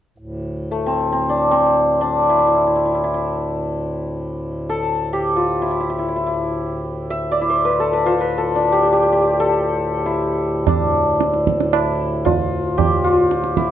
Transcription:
0.18 10.65 D2 soft
0.18 10.65 A2 soft
0.71 5.15 A3 medium
0.86 1.12 C4 medium
1.12 1.51 C4 medium
1.29 2.01 D4 medium
1.51 5.49 C4 medium
2.01 5.74 D4 medium
2.30 2.38 E4 medium
2.39 2.47 E4 soft
2.47 2.56 E4 soft
2.57 2.66 E4 soft
2.67 2.75 E4 soft
2.76 2.85 E4 soft
2.85 2.94 E4 soft
2.95 3.03 E4 soft
3.04 3.13 E4 medium
3.14 5.42 E4 soft
4.69 7.62 A4 medium
5.13 8.27 G4 medium
5.36 5.68 F4 medium
5.62 5.71 E4 medium
5.71 5.80 E4 soft
5.80 5.89 E4 soft
5.90 5.98 E4 soft
5.99 6.08 E4 medium
6.08 6.16 E4 soft
6.16 6.26 E4 soft
6.27 7.41 E4 soft
7.10 8.12 E5 medium
7.32 9.78 D5 medium
7.41 8.12 E4 medium
7.50 7.71 C5 medium
7.65 7.93 B4 medium
7.80 8.37 A4 medium
7.93 8.12 B4 medium
8.06 10.12 F4 medium
8.06 8.27 C5 medium
8.21 10.95 B4 medium
8.38 9.39 A4 medium
8.55 10.68 D4 medium
8.72 8.82 G4 medium
8.82 8.92 G4 medium
8.92 9.02 G4 medium
9.03 9.12 G4 medium
9.12 9.20 G4 medium
9.21 12.35 G4 medium
9.40 12.32 A4 medium
10.06 11.73 E4 medium
10.66 13.71 D2 medium
10.66 13.71 A2 medium
10.66 13.71 D4 medium
10.66 tabla tin medium
10.66 tabla ge medium
11.21 tabla te medium
11.34 tabla te medium
11.47 tabla ke medium
11.61 tabla te medium
11.73 12.31 E4 medium
11.73 tabla na medium
12.25 13.04 F4 medium
12.25 tabla tin medium
12.25 tabla ge medium
12.78 13.71 G4 medium
12.78 tabla tin medium
12.78 tabla ge medium
13.04 13.63 F4 medium
13.31 tabla te medium
13.44 tabla te medium
13.57 13.71 E4 medium
13.57 tabla ke medium

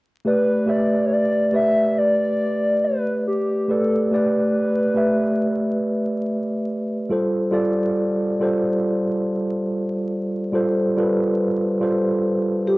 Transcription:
0.25 0.59 A3 medium
0.25 0.60 G4 medium
0.25 0.71 B4 loud
0.25 0.60 B4 medium
0.25 0.61 D5 medium
0.66 1.36 A3 medium
0.66 1.36 G4 medium
0.66 1.37 B4 medium
0.66 1.05 D5 medium
0.66 1.37 E5 medium
1.06 1.14 C#5 medium
1.13 1.54 D5 loud
1.52 2.86 A3 medium
1.52 2.87 G4 medium
1.52 2.87 B4 medium
1.52 2.88 D5 medium
1.52 1.99 E5 loud
1.98 2.86 D5 loud
2.84 3.26 B4 loud
3.27 3.72 G4 medium
3.68 4.02 A3 medium
3.68 4.03 G4 medium
3.68 4.12 A4 medium
3.68 4.03 B4 medium
3.68 4.04 D5 medium
4.11 4.80 A3 medium
4.11 4.80 G4 medium
4.11 6.65 B4 loud
4.11 4.81 B4 medium
4.11 4.81 D5 medium
4.95 6.29 A3 medium
4.95 6.30 G4 medium
4.95 6.30 B4 medium
4.95 6.31 E5 medium
7.09 7.44 G3 medium
7.09 7.45 F4 medium
7.09 7.45 A4 medium
7.09 7.46 C5 medium
7.51 8.21 G3 medium
7.51 8.22 F4 medium
7.51 8.22 A4 medium
7.51 8.22 D5 loud
8.40 9.73 G3 medium
8.40 9.74 F4 medium
8.40 9.74 A4 medium
8.40 9.75 C5 medium
10.52 10.87 G3 medium
10.52 10.88 F4 medium
10.52 10.88 A4 medium
10.52 10.89 C5 loud
10.97 11.65 G3 medium
10.97 11.66 F4 medium
10.97 11.66 A4 medium
10.97 11.67 B4 medium
11.80 12.78 G3 medium
11.80 12.78 F4 medium
11.80 12.78 A4 medium
11.80 12.78 C5 medium
12.67 12.78 G4 medium

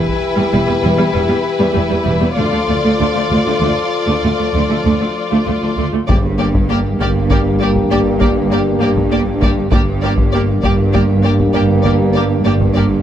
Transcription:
0.00 2.19 E3 medium
0.00 2.34 E4 soft
0.00 2.19 G4 medium
0.00 2.34 B4 medium
0.09 taiko soft
0.36 0.44 E2 medium
0.36 0.43 G3 medium
0.52 0.60 E1 soft
0.52 0.60 E2 soft
0.52 0.58 G3 soft
0.67 0.75 E2 soft
0.67 0.74 G3 soft
0.82 0.90 E1 medium
0.82 0.89 E2 medium
0.82 0.89 G3 medium
0.98 1.05 E2 soft
0.98 1.04 G3 soft
1.12 1.20 E1 medium
1.12 1.20 E2 medium
1.12 1.19 G3 soft
1.28 1.36 E2 soft
1.28 1.34 G3 soft
1.58 1.66 E2 medium
1.58 1.65 G3 medium
1.74 1.82 E1 soft
1.74 1.82 E2 soft
1.74 1.80 G3 soft
1.88 1.97 E2 soft
1.88 1.95 G3 soft
2.04 2.12 E1 soft
2.04 2.13 E2 medium
2.04 2.11 G3 soft
2.19 2.28 E2 soft
2.19 2.26 G3 soft
2.36 2.44 D2 medium
2.36 2.44 D2 soft
2.36 5.74 F3 soft
2.36 2.43 A3 medium
2.36 5.85 F4 soft
2.36 5.73 A4 soft
2.36 5.84 D5 soft
2.52 2.60 D2 soft
2.52 2.58 A3 soft
2.68 2.74 D2 soft
2.68 2.75 D2 soft
2.68 2.74 A3 soft
2.84 2.91 D2 medium
2.84 2.90 A3 medium
2.99 3.06 D2 soft
2.99 3.06 A3 soft
3.15 3.22 D2 soft
3.15 3.21 A3 soft
3.30 3.36 D2 medium
3.30 3.37 D2 soft
3.30 3.37 A3 soft
3.46 3.52 D2 soft
3.46 3.53 A3 soft
3.60 3.67 D2 medium
3.60 3.68 D2 soft
3.60 3.68 A3 medium
4.08 4.14 D2 medium
4.08 4.14 A3 soft
4.23 4.29 D2 soft
4.23 4.30 D2 soft
4.23 4.30 A3 soft
4.39 4.46 D2 soft
4.39 4.45 A3 soft
4.54 4.60 D2 medium
4.54 4.61 D2 medium
4.54 4.61 A3 medium
4.70 4.76 D2 soft
4.70 4.76 A3 soft
4.84 4.91 D2 medium
4.84 4.92 A3 soft
5.00 5.07 D2 soft
5.00 5.07 A3 soft
5.31 5.38 D2 soft
5.31 5.38 A3 soft
5.46 5.53 D2 soft
5.46 5.53 A3 soft
5.62 5.69 D2 soft
5.62 5.68 A3 soft
5.77 5.83 D2 soft
5.77 5.84 D2 soft
5.77 5.84 A3 soft
5.92 5.99 D2 soft
5.92 5.99 A3 soft
6.07 6.89 G1 soft
6.07 6.96 G2 medium
6.07 6.89 G2 medium
6.07 9.69 G2 medium
6.07 6.15 A#3 soft
6.07 9.69 A#3 medium
6.07 9.69 D4 medium
6.07 9.69 G4 medium
6.07 6.18 G4 soft
6.07 6.16 D5 soft
6.07 taiko medium
6.38 6.46 A#3 soft
6.38 6.47 G4 soft
6.38 6.47 D5 soft
6.55 taiko medium
6.70 6.78 A#3 soft
6.70 6.78 G4 soft
6.70 6.78 D5 soft
6.99 7.80 G1 soft
6.99 7.80 G2 soft
6.99 7.07 A#3 soft
6.99 7.09 G4 soft
6.99 7.09 D5 soft
6.99 taiko medium
7.30 7.38 A#3 soft
7.30 7.39 G4 soft
7.30 7.38 D5 soft
7.30 taiko medium
7.60 7.68 A#3 soft
7.60 7.70 G4 soft
7.60 7.68 D5 soft
7.75 taiko medium
7.90 8.71 G1 medium
7.90 8.71 G2 medium
7.90 7.98 A#3 soft
7.90 7.99 G4 soft
7.90 8.00 D5 soft
8.20 8.28 A#3 soft
8.20 8.31 G4 soft
8.20 8.28 D5 soft
8.20 taiko medium
8.51 8.59 A#3 soft
8.51 8.61 G4 soft
8.51 8.60 D5 soft
8.81 9.62 G1 soft
8.81 9.62 G2 medium
8.81 8.89 A#3 soft
8.81 8.90 G4 soft
8.81 8.89 D5 soft
8.97 taiko medium
9.11 9.19 A#3 soft
9.11 9.20 G4 soft
9.11 9.20 D5 soft
9.41 9.49 A#3 soft
9.41 9.52 G4 soft
9.41 9.50 D5 soft
9.41 taiko medium
9.71 10.53 G1 medium
9.71 13.02 G2 medium
9.71 10.53 G2 medium
9.71 9.79 A#3 soft
9.71 13.02 A#3 medium
9.71 13.02 D4 medium
9.71 13.02 G4 medium
9.71 9.81 G4 soft
9.71 9.80 D5 soft
9.71 taiko medium
10.02 10.10 A#3 soft
10.02 10.12 G4 soft
10.02 10.11 D5 soft
10.18 taiko medium
10.32 10.41 A#3 soft
10.32 10.42 G4 soft
10.32 10.40 D5 soft
10.63 11.44 G1 soft
10.63 11.44 G2 medium
10.63 10.71 A#3 soft
10.63 10.72 G4 soft
10.63 10.71 D5 soft
10.63 taiko medium
10.93 11.01 A#3 soft
10.93 11.02 G4 soft
10.93 11.01 D5 soft
10.93 taiko medium
11.23 11.32 A#3 soft
11.23 11.33 G4 soft
11.23 11.31 D5 soft
11.39 taiko medium
11.53 12.35 G1 medium
11.53 12.35 G2 medium
11.53 11.61 A#3 soft
11.53 11.63 G4 medium
11.53 11.61 D5 soft
11.83 11.92 A#3 soft
11.83 11.93 G4 soft
11.83 11.91 D5 soft
11.83 taiko medium
12.13 12.22 A#3 soft
12.13 12.24 G4 soft
12.13 12.21 D5 soft
12.44 13.02 G1 medium
12.44 13.02 G2 medium
12.44 12.53 A#3 soft
12.44 12.53 G4 soft
12.44 12.52 D5 soft
12.61 taiko medium
12.74 12.84 A#3 soft
12.74 12.84 G4 soft
12.74 12.82 D5 soft

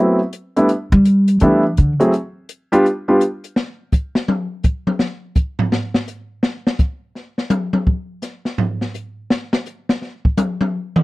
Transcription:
0.00 0.18 F#3 medium
0.00 0.18 A3 soft
0.00 0.19 B3 soft
0.00 0.19 C4 soft
0.00 0.19 E4 medium
0.33 closed hi-hat soft
0.56 0.68 G3 medium
0.56 0.68 A3 medium
0.56 0.68 B3 medium
0.56 0.68 D4 medium
0.56 0.68 E4 medium
0.56 closed hi-hat soft
0.69 closed hi-hat soft
0.92 1.38 G3 loud
1.05 closed hi-hat soft
1.28 closed hi-hat soft
1.40 1.75 E3 medium
1.40 1.62 G3 medium
1.40 1.62 A3 medium
1.40 1.62 B3 medium
1.40 1.62 D4 medium
1.40 1.62 E4 medium
1.40 closed hi-hat soft
1.77 1.92 D3 medium
1.77 closed hi-hat soft
2.00 2.11 F#3 medium
2.00 2.11 A3 soft
2.00 2.11 C4 medium
2.00 2.11 E4 soft
2.00 2.12 G#4 medium
2.00 closed hi-hat soft
2.14 closed hi-hat soft
2.49 closed hi-hat soft
2.72 2.83 G3 medium
2.72 2.83 B3 medium
2.72 2.84 D4 medium
2.72 2.84 F4 medium
2.72 2.84 G4 medium
2.72 closed hi-hat soft
2.86 closed hi-hat soft
3.08 3.19 G3 medium
3.08 3.19 B3 medium
3.08 3.19 D4 soft
3.08 3.20 F4 medium
3.08 3.20 G4 medium
3.21 closed hi-hat medium
3.44 closed hi-hat soft
3.56 snare medium
3.92 kick medium
3.92 hi-hat pedal medium
4.15 snare loud
4.28 high tom loud
4.63 kick medium
4.63 hi-hat pedal medium
4.87 high tom medium
4.99 snare medium
5.35 kick medium
5.35 hi-hat pedal medium
5.59 floor tom loud
5.72 snare medium
5.94 snare loud
6.07 hi-hat pedal medium
6.43 snare loud
6.67 snare loud
6.78 kick medium
6.78 hi-hat pedal medium
7.15 snare soft
7.38 snare medium
7.50 hi-hat pedal medium
7.50 high tom loud
7.73 high tom medium
7.87 kick medium
8.22 snare soft
8.22 hi-hat pedal medium
8.45 snare medium
8.58 floor tom medium
8.81 snare medium
8.94 hi-hat pedal medium
9.30 snare loud
9.53 snare loud
9.66 hi-hat pedal medium
9.89 snare loud
10.02 snare soft
10.25 kick medium
10.37 hi-hat pedal medium
10.37 high tom loud
10.61 high tom medium
10.96 mid tom loud

